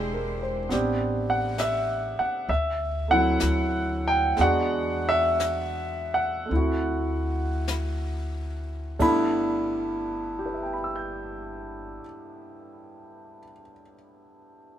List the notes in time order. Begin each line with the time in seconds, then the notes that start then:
Already playing: E1 G#3 C4 D4 E4 G4 G#4 C5 G5
0.13 A#4
0.42 C5
0.69 A1 B3 C4 D4 G4, brush sweep, snare
1.30 F#5
1.58 E5, snare, hi-hat pedal
2.19 F#5, muted upright bass stroke
2.47 D2 E5, brush sweep
3.08 A3 C4 E4 F#5
3.13 F#3
3.40 D2, snare, hi-hat pedal
4.08 G5
4.37 E2 G#3 B3 D4, brush sweep, snare
4.41 F#4 F#5
5.09 E5
5.40 snare, hi-hat pedal
6.14 F#5
6.46 A3 C4, brush sweep
6.51 D2 E4
6.56 F#4
7.68 snare, hi-hat pedal
8.99 G1 G2 G3 A3 B3 E4 B5, kick, ride
10.39 G4
10.46 B4
10.54 E5
10.63 G5
10.73 B5
10.84 E6
10.96 G6